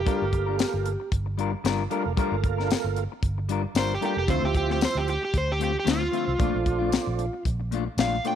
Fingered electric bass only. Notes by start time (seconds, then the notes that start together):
0.22 G1
0.74 G1
1.12 G1
1.64 G1
2.06 F1
2.32 G1
2.84 G1
3.23 G1
3.75 G1
4.17 F1
4.28 D2
4.42 D2
4.95 D2
5.34 D2
5.86 D2
6.27 C2
6.40 A#1
6.54 A#1
7.07 A#1
7.45 A#1
7.97 A#1